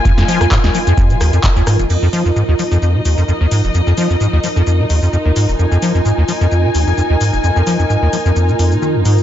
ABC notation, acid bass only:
X:1
M:4/4
L:1/16
Q:"Swing 16ths" 1/4=130
K:Fm
V:1 name="Acid bass" clef=bass
F,, F,, F, F,, A,, E,, F, F,, F,, C, E,, F,, F,, E,, A,, F,,, | F,, F,, F, F,, A,, E,, F, F,, F,, C, E,, F,, F,, E,, A,, F,,, | F,, F,, F, F,, A,, E,, F, F,, F,, C, E,, F,, F,, E,, A,, F,,, | F,, F,, F, F,, A,, E,, F, F,, F,, C, E,, F,, F,, E,, A,, F,,, |
F,, F,, F, F,, A,, E,, F, F,, F,, C, F,, B,, E, F,, A,, F,, |]